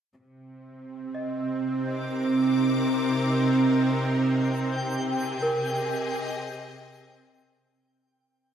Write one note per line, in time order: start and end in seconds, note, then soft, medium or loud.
0.19 7.81 C3 medium
0.19 7.93 C3 medium
0.19 7.92 C4 medium
1.08 7.82 C4 medium
1.15 2.47 D#5 medium
1.70 5.52 D#4 medium
1.88 5.52 A#4 medium
1.88 4.00 D6 medium
4.00 7.83 G5 medium
4.49 7.82 G4 medium
5.06 7.81 G#4 medium
5.42 6.76 A#4 medium
5.72 7.82 D#5 medium